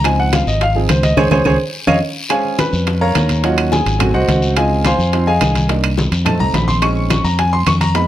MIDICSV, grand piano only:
0, 0, Header, 1, 2, 480
1, 0, Start_track
1, 0, Tempo, 282486
1, 83, Time_signature, 4, 2, 24, 8
1, 13719, End_track
2, 0, Start_track
2, 0, Title_t, "Grand piano"
2, 0, Program_c, 0, 0
2, 64, Note_on_c, 0, 53, 56
2, 74, Note_on_c, 0, 60, 51
2, 83, Note_on_c, 0, 80, 84
2, 90, Note_on_c, 0, 63, 61
2, 316, Note_off_c, 0, 80, 0
2, 333, Note_on_c, 0, 78, 95
2, 561, Note_off_c, 0, 78, 0
2, 572, Note_on_c, 0, 77, 81
2, 800, Note_off_c, 0, 77, 0
2, 812, Note_on_c, 0, 75, 84
2, 1041, Note_off_c, 0, 75, 0
2, 1064, Note_on_c, 0, 77, 101
2, 1254, Note_off_c, 0, 53, 0
2, 1256, Note_off_c, 0, 60, 0
2, 1264, Note_off_c, 0, 63, 0
2, 1279, Note_on_c, 0, 53, 53
2, 1281, Note_on_c, 0, 60, 46
2, 1286, Note_on_c, 0, 68, 67
2, 1287, Note_off_c, 0, 77, 0
2, 1290, Note_on_c, 0, 63, 55
2, 1497, Note_off_c, 0, 53, 0
2, 1498, Note_off_c, 0, 60, 0
2, 1503, Note_off_c, 0, 63, 0
2, 1516, Note_on_c, 0, 72, 84
2, 1517, Note_off_c, 0, 68, 0
2, 1753, Note_off_c, 0, 72, 0
2, 1754, Note_on_c, 0, 75, 98
2, 1986, Note_on_c, 0, 68, 96
2, 1991, Note_off_c, 0, 75, 0
2, 1994, Note_on_c, 0, 72, 95
2, 1995, Note_on_c, 0, 73, 99
2, 2147, Note_off_c, 0, 68, 0
2, 2151, Note_off_c, 0, 72, 0
2, 2152, Note_off_c, 0, 73, 0
2, 2237, Note_on_c, 0, 72, 104
2, 2239, Note_on_c, 0, 73, 96
2, 2242, Note_on_c, 0, 68, 97
2, 2393, Note_off_c, 0, 72, 0
2, 2395, Note_off_c, 0, 73, 0
2, 2397, Note_off_c, 0, 68, 0
2, 2481, Note_on_c, 0, 72, 97
2, 2485, Note_on_c, 0, 73, 99
2, 2490, Note_on_c, 0, 68, 101
2, 2636, Note_off_c, 0, 72, 0
2, 2638, Note_off_c, 0, 73, 0
2, 2641, Note_off_c, 0, 68, 0
2, 3182, Note_on_c, 0, 73, 103
2, 3183, Note_on_c, 0, 77, 104
2, 3184, Note_on_c, 0, 75, 103
2, 3344, Note_off_c, 0, 73, 0
2, 3345, Note_off_c, 0, 75, 0
2, 3345, Note_off_c, 0, 77, 0
2, 3896, Note_on_c, 0, 56, 51
2, 3906, Note_on_c, 0, 72, 47
2, 3910, Note_on_c, 0, 80, 82
2, 3914, Note_on_c, 0, 61, 59
2, 3915, Note_on_c, 0, 73, 66
2, 3919, Note_on_c, 0, 68, 65
2, 3920, Note_on_c, 0, 77, 65
2, 4363, Note_off_c, 0, 80, 0
2, 4366, Note_off_c, 0, 73, 0
2, 4368, Note_off_c, 0, 68, 0
2, 4368, Note_off_c, 0, 77, 0
2, 4401, Note_on_c, 0, 83, 91
2, 4409, Note_on_c, 0, 71, 80
2, 5072, Note_off_c, 0, 83, 0
2, 5077, Note_off_c, 0, 71, 0
2, 5119, Note_on_c, 0, 77, 76
2, 5120, Note_on_c, 0, 82, 96
2, 5121, Note_on_c, 0, 73, 80
2, 5122, Note_on_c, 0, 70, 78
2, 5762, Note_off_c, 0, 56, 0
2, 5768, Note_off_c, 0, 72, 0
2, 5771, Note_off_c, 0, 61, 0
2, 5791, Note_off_c, 0, 77, 0
2, 5792, Note_off_c, 0, 73, 0
2, 5792, Note_off_c, 0, 82, 0
2, 5793, Note_off_c, 0, 70, 0
2, 5833, Note_on_c, 0, 54, 54
2, 5844, Note_on_c, 0, 61, 49
2, 5851, Note_on_c, 0, 78, 75
2, 5852, Note_on_c, 0, 65, 59
2, 5853, Note_on_c, 0, 66, 62
2, 5855, Note_on_c, 0, 73, 62
2, 5856, Note_on_c, 0, 75, 65
2, 6295, Note_off_c, 0, 66, 0
2, 6295, Note_off_c, 0, 78, 0
2, 6297, Note_off_c, 0, 73, 0
2, 6297, Note_off_c, 0, 75, 0
2, 6321, Note_on_c, 0, 80, 87
2, 6326, Note_on_c, 0, 68, 70
2, 6751, Note_off_c, 0, 54, 0
2, 6756, Note_off_c, 0, 61, 0
2, 6761, Note_off_c, 0, 65, 0
2, 6771, Note_on_c, 0, 57, 57
2, 6783, Note_on_c, 0, 60, 52
2, 6793, Note_on_c, 0, 66, 67
2, 6992, Note_off_c, 0, 80, 0
2, 6995, Note_off_c, 0, 68, 0
2, 7010, Note_off_c, 0, 66, 0
2, 7036, Note_on_c, 0, 66, 77
2, 7036, Note_on_c, 0, 78, 97
2, 7037, Note_on_c, 0, 72, 73
2, 7041, Note_on_c, 0, 75, 76
2, 7699, Note_off_c, 0, 57, 0
2, 7705, Note_off_c, 0, 60, 0
2, 7709, Note_off_c, 0, 66, 0
2, 7710, Note_off_c, 0, 72, 0
2, 7710, Note_off_c, 0, 78, 0
2, 7712, Note_off_c, 0, 75, 0
2, 7743, Note_on_c, 0, 60, 55
2, 7754, Note_on_c, 0, 63, 50
2, 7762, Note_on_c, 0, 80, 80
2, 7763, Note_on_c, 0, 65, 57
2, 7771, Note_on_c, 0, 75, 63
2, 7772, Note_on_c, 0, 68, 64
2, 7772, Note_on_c, 0, 77, 62
2, 8210, Note_off_c, 0, 80, 0
2, 8214, Note_off_c, 0, 75, 0
2, 8215, Note_off_c, 0, 68, 0
2, 8215, Note_off_c, 0, 77, 0
2, 8259, Note_on_c, 0, 84, 99
2, 8261, Note_on_c, 0, 77, 80
2, 8262, Note_on_c, 0, 72, 75
2, 8262, Note_on_c, 0, 80, 76
2, 8437, Note_off_c, 0, 60, 0
2, 8443, Note_off_c, 0, 63, 0
2, 8448, Note_off_c, 0, 65, 0
2, 8714, Note_on_c, 0, 60, 51
2, 8721, Note_on_c, 0, 63, 46
2, 8725, Note_on_c, 0, 65, 54
2, 8922, Note_off_c, 0, 84, 0
2, 8923, Note_off_c, 0, 77, 0
2, 8923, Note_off_c, 0, 80, 0
2, 8924, Note_off_c, 0, 72, 0
2, 8935, Note_off_c, 0, 60, 0
2, 8938, Note_off_c, 0, 63, 0
2, 8941, Note_off_c, 0, 65, 0
2, 8959, Note_on_c, 0, 80, 96
2, 8960, Note_on_c, 0, 75, 72
2, 8967, Note_on_c, 0, 68, 74
2, 8969, Note_on_c, 0, 77, 71
2, 9631, Note_off_c, 0, 80, 0
2, 9632, Note_off_c, 0, 75, 0
2, 9635, Note_off_c, 0, 68, 0
2, 9636, Note_off_c, 0, 77, 0
2, 9658, Note_on_c, 0, 58, 56
2, 9670, Note_on_c, 0, 62, 50
2, 9682, Note_on_c, 0, 63, 58
2, 9989, Note_off_c, 0, 58, 0
2, 9996, Note_off_c, 0, 62, 0
2, 10002, Note_off_c, 0, 63, 0
2, 10612, Note_on_c, 0, 57, 58
2, 10618, Note_on_c, 0, 60, 52
2, 10626, Note_on_c, 0, 81, 88
2, 10635, Note_on_c, 0, 63, 61
2, 10867, Note_off_c, 0, 81, 0
2, 10877, Note_on_c, 0, 82, 102
2, 11107, Note_on_c, 0, 83, 83
2, 11113, Note_off_c, 0, 82, 0
2, 11249, Note_off_c, 0, 83, 0
2, 11274, Note_on_c, 0, 83, 68
2, 11315, Note_off_c, 0, 83, 0
2, 11346, Note_on_c, 0, 84, 98
2, 11539, Note_off_c, 0, 57, 0
2, 11542, Note_off_c, 0, 60, 0
2, 11551, Note_off_c, 0, 63, 0
2, 11587, Note_off_c, 0, 84, 0
2, 11588, Note_on_c, 0, 56, 51
2, 11588, Note_on_c, 0, 60, 47
2, 11594, Note_on_c, 0, 61, 51
2, 11595, Note_on_c, 0, 85, 93
2, 11600, Note_on_c, 0, 63, 57
2, 12268, Note_off_c, 0, 85, 0
2, 12278, Note_off_c, 0, 56, 0
2, 12279, Note_off_c, 0, 60, 0
2, 12282, Note_off_c, 0, 61, 0
2, 12285, Note_off_c, 0, 63, 0
2, 12311, Note_on_c, 0, 82, 93
2, 12549, Note_off_c, 0, 82, 0
2, 12560, Note_on_c, 0, 80, 87
2, 12793, Note_on_c, 0, 84, 99
2, 12794, Note_off_c, 0, 80, 0
2, 13030, Note_off_c, 0, 84, 0
2, 13041, Note_on_c, 0, 85, 95
2, 13268, Note_on_c, 0, 82, 104
2, 13274, Note_off_c, 0, 85, 0
2, 13497, Note_on_c, 0, 56, 53
2, 13507, Note_off_c, 0, 82, 0
2, 13510, Note_on_c, 0, 59, 51
2, 13513, Note_on_c, 0, 83, 102
2, 13515, Note_on_c, 0, 63, 59
2, 13719, Note_off_c, 0, 56, 0
2, 13719, Note_off_c, 0, 59, 0
2, 13719, Note_off_c, 0, 63, 0
2, 13719, Note_off_c, 0, 83, 0
2, 13719, End_track
0, 0, End_of_file